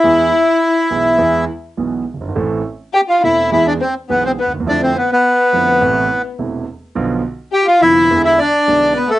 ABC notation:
X:1
M:4/4
L:1/16
Q:1/4=104
K:Ephr
V:1 name="Bandoneon"
[Ee]8- [Ee]2 z6 | z4 [Gg] [Ff] [Ee]2 [Ee] [Dd] [Cc]2 [B,B] [Cc] [B,B]2 | [Dd] [Cc] [B,B] [B,B]8 z4 z | z4 [Gg] [Ff] [Ee]3 [Ee] [Dd]4 [B,B] [A,A] |]
V:2 name="Violin section"
E8- E2 z6 | z4 G F E2 E D C2 B, C B,2 | D C B, B,8 z4 z | z4 G F E3 E D4 B, A, |]
V:3 name="Grand piano" clef=bass
[E,,E,^G,B,^G]2 z4 [B,,,B,,E,G,B,G]2 [E,,E,G,B,G]2 z2 [B,,,B,,E,G,B,G]2 z/2 ^F,,,/2 =G,,,/2 ^G,,,/2 | [A,,,A,,E,A,CA]2 z4 [E,,,E,,E,A,CA]2 [E,,E,^G,B,^G]2 z2 [B,,,B,,E,G,B,G]2 z/2 D,,/2 ^D,,/2 E,,/2 | [F,,D,F,A,E]2 z4 [F,,D,F,A,E]2 [A,,,A,,C,E,A,E]2 z2 [E,,,E,,C,E,A,E]2 z2 | [B,,,B,,D,F,B,F]2 z4 [F,,,F,,D,F,B,F]2 [E,,D,E,^G,B,E]2 z2 [B,,,B,,D,G,B,E]2 z2 |]